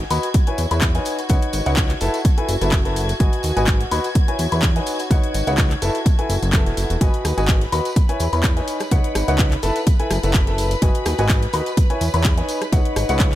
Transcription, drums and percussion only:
0.10 open hi-hat, tambourine
0.23 closed hi-hat, tambourine
0.34 kick, closed hi-hat, tambourine
0.47 closed hi-hat
0.58 open hi-hat, tambourine
0.71 closed hi-hat, tambourine
0.81 kick, clap, closed hi-hat, tambourine
0.95 closed hi-hat
1.05 open hi-hat, tambourine
1.18 closed hi-hat, tambourine
1.29 kick, closed hi-hat, tambourine
1.42 closed hi-hat
1.53 open hi-hat, tambourine
1.66 closed hi-hat, tambourine
1.77 kick, clap, closed hi-hat, tambourine
1.89 clap, closed hi-hat
2.01 open hi-hat, tambourine
2.14 closed hi-hat, tambourine
2.25 kick, closed hi-hat
2.38 closed hi-hat
2.49 open hi-hat, tambourine
2.61 closed hi-hat, tambourine
2.72 kick, clap, closed hi-hat, tambourine
2.85 closed hi-hat
2.96 open hi-hat, tambourine
3.09 closed hi-hat, tambourine
3.20 kick, closed hi-hat, tambourine
3.33 closed hi-hat
3.43 open hi-hat, tambourine
3.57 closed hi-hat, tambourine
3.67 kick, clap, closed hi-hat, tambourine
3.81 closed hi-hat
3.91 open hi-hat, tambourine
4.04 closed hi-hat, tambourine
4.15 kick, closed hi-hat, tambourine
4.28 closed hi-hat
4.39 open hi-hat, tambourine
4.52 closed hi-hat, tambourine
4.62 kick, clap, closed hi-hat, tambourine
4.76 closed hi-hat
4.86 open hi-hat, tambourine
4.99 closed hi-hat, tambourine
5.11 kick, closed hi-hat
5.24 closed hi-hat
5.34 open hi-hat, tambourine
5.47 closed hi-hat, tambourine
5.58 kick, clap, closed hi-hat, tambourine
5.71 clap, closed hi-hat
5.82 open hi-hat, tambourine
5.95 closed hi-hat, tambourine
6.06 kick, closed hi-hat, tambourine
6.19 closed hi-hat
6.30 open hi-hat, tambourine
6.42 closed hi-hat, tambourine
6.53 kick, clap, closed hi-hat, tambourine
6.66 closed hi-hat
6.77 open hi-hat, tambourine
6.90 closed hi-hat, tambourine
7.01 kick, closed hi-hat, tambourine
7.14 closed hi-hat
7.25 cross-stick, open hi-hat, tambourine
7.38 closed hi-hat, tambourine
7.48 kick, clap, closed hi-hat, tambourine
7.61 closed hi-hat
7.72 open hi-hat, tambourine
7.85 closed hi-hat, tambourine
7.96 kick, closed hi-hat, tambourine
8.09 closed hi-hat
8.20 open hi-hat, tambourine
8.33 closed hi-hat, tambourine
8.43 kick, clap, closed hi-hat, tambourine
8.57 closed hi-hat
8.68 open hi-hat, tambourine
8.80 cross-stick, closed hi-hat, tambourine
8.91 kick, closed hi-hat
9.04 closed hi-hat
9.15 cross-stick, open hi-hat, tambourine
9.28 closed hi-hat, tambourine
9.39 kick, clap, closed hi-hat, tambourine
9.52 clap, closed hi-hat
9.62 open hi-hat, tambourine
9.76 closed hi-hat, tambourine
9.87 kick, closed hi-hat
10.00 closed hi-hat
10.11 cross-stick, open hi-hat, tambourine
10.23 closed hi-hat, tambourine
10.34 kick, clap, closed hi-hat
10.47 closed hi-hat
10.58 open hi-hat, tambourine
10.71 closed hi-hat, tambourine
10.82 kick, closed hi-hat
10.95 closed hi-hat
11.05 cross-stick, open hi-hat, tambourine
11.18 closed hi-hat, tambourine
11.29 kick, clap, closed hi-hat, tambourine
11.43 closed hi-hat
11.53 open hi-hat, tambourine
11.66 closed hi-hat, tambourine
11.77 kick, closed hi-hat, tambourine
11.90 closed hi-hat
12.01 open hi-hat, tambourine
12.14 closed hi-hat, tambourine
12.24 kick, clap, closed hi-hat
12.38 closed hi-hat
12.49 open hi-hat, tambourine
12.62 cross-stick, closed hi-hat, tambourine
12.72 kick, closed hi-hat, tambourine
12.85 closed hi-hat
12.96 cross-stick, open hi-hat, tambourine
13.09 closed hi-hat, tambourine
13.20 kick, clap, closed hi-hat

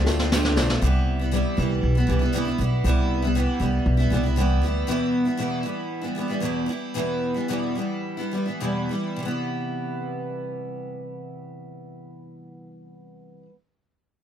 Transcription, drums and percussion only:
0.06 snare, tambourine
0.19 snare
0.32 snare, tambourine
0.45 snare
0.57 snare, tambourine
0.70 snare

